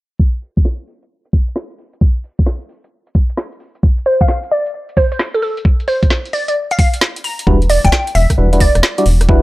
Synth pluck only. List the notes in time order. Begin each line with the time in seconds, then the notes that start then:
4.06 C5
4.21 F5
4.29 F5
4.52 D5
4.97 C5
5.12 C5
5.34 A4
5.42 A4
5.88 C5
6.33 D5
6.48 D5
6.71 F5
6.79 F5
7.24 A#5
7.70 D5
7.85 G5
7.92 G5
8.15 E5
8.61 D5